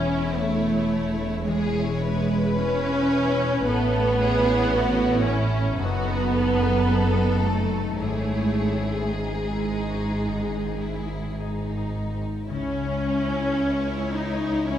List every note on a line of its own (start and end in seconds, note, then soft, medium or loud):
0.00 3.62 E1 medium
0.00 3.62 E2 soft
0.00 1.46 E3 medium
0.00 1.12 G#3 soft
0.00 0.38 C#4 medium
0.00 1.83 C#4 soft
0.00 1.10 E4 soft
0.00 1.42 E4 medium
0.00 1.46 E4 medium
0.00 1.42 C#5 medium
0.06 0.74 G#4 soft
0.40 1.46 A3 medium
0.40 2.58 C#5 soft
0.76 2.21 G#4 soft
1.12 3.30 E4 soft
1.46 3.71 E3 medium
1.46 2.58 G#3 medium
1.46 2.56 E4 medium
1.46 2.02 G#4 medium
1.46 2.56 C#5 medium
1.84 4.01 C#4 soft
2.02 3.63 B4 medium
2.22 2.95 G#4 medium
2.58 3.66 C#4 medium
2.58 3.64 E4 medium
2.58 3.64 C#5 medium
2.58 5.83 C#5 medium
2.96 3.71 G#4 soft
3.31 4.37 E4 soft
3.66 5.75 A1 medium
3.66 5.75 A2 medium
3.66 5.83 A2 medium
3.66 5.22 B3 loud
3.66 5.75 E4 medium
3.66 4.20 A4 medium
3.66 5.75 C#5 medium
4.02 5.42 C#4 soft
4.19 4.71 G#4 medium
4.38 5.07 E4 soft
4.72 5.26 F#4 medium
4.72 6.86 A4 soft
5.09 5.83 E4 soft
5.25 5.78 C#4 medium
5.25 5.79 E4 medium
5.44 5.83 C#4 soft
5.78 8.00 F#1 medium
5.78 8.05 F#2 medium
5.78 8.00 F#2 medium
5.78 7.43 B3 medium
5.78 7.96 D#4 medium
5.78 6.31 F#4 medium
5.78 8.00 A4 medium
6.14 7.24 D#4 soft
6.33 8.00 A4 medium
6.51 7.62 F#3 soft
6.87 8.05 A4 soft
7.25 8.05 D#4 soft
7.43 7.98 A3 medium
7.63 8.05 F#3 soft
7.99 12.25 G#1 medium
7.99 12.25 G#2 soft
7.99 10.26 G#2 medium
7.99 9.10 A3 medium
7.99 9.12 E4 medium
7.99 11.94 G#4 medium
7.99 9.12 C#5 medium
8.38 9.88 C#4 soft
8.75 9.51 E4 soft
9.12 11.39 G#3 medium
9.12 10.79 D#4 medium
9.12 11.39 G#4 soft
9.52 10.32 E4 soft
9.89 10.31 C#4 soft
10.27 12.54 G#2 soft
10.65 12.12 C4 soft
10.82 11.38 E4 soft
11.03 11.76 D#4 soft
11.39 12.49 D#4 soft
11.39 13.59 G#4 soft
11.77 12.54 D#4 soft
12.14 12.54 C4 soft
12.49 14.79 C#2 medium
12.49 14.79 C#2 soft
12.49 14.79 C#3 soft
12.49 14.11 C#4 medium
12.49 14.79 E4 medium
12.49 14.79 C#5 medium
12.87 14.32 C#4 soft
13.24 13.95 E4 soft
13.60 14.79 G#4 soft
13.96 14.79 E4 soft
14.14 14.69 D#4 medium
14.34 14.79 C#4 soft
14.69 14.79 G#3 soft
14.69 14.79 C#4 medium
14.69 14.79 E4 medium